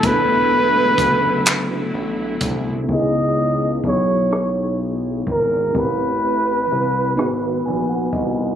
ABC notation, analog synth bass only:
X:1
M:6/8
L:1/8
Q:3/8=42
K:C#m
V:1 name="Analog synth bass" clef=bass
E,,,2 F,,,2 A,,, ^B,,, | C,,2 B,,,3 G,,, | A,,,2 =C,, G,,, ^A,,, ^B,,, |]